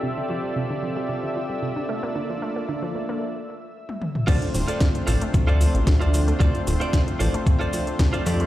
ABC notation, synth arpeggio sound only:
X:1
M:4/4
L:1/16
Q:1/4=113
K:Dm
V:1 name="Synth arpeggio sound" clef=bass
C, D, F, G, C, D, F, G, C, D, F, G, C, D, A, B, | D, F, A, B, D, F, A, B, z8 | C, D, F, A, C, D, F, A, C, D, F, A, C, D, F, A, | C, D, F, A, C, D, F, A, C, D, F, A, C, D, F, G, |]